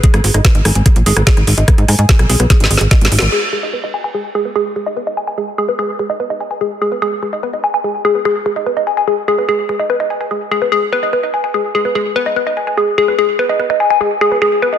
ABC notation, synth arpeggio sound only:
X:1
M:4/4
L:1/16
Q:1/4=146
K:G#m
V:1 name="Synth arpeggio sound"
G z G d B d g g G z G B G z G d | B d g g G z G B G z G G d z =G A | G z G d B d g g G z G B G z G d | B d g g G z G B G z G d B d g g |
G z G B G z G d B d g g G z G B | G z G d B d g g G z G B G z G d | B d g g G z G B G z B d B d g g | G z G B G z B d B d g g G z G B |
G z B d B d g g G z G B G z B d |]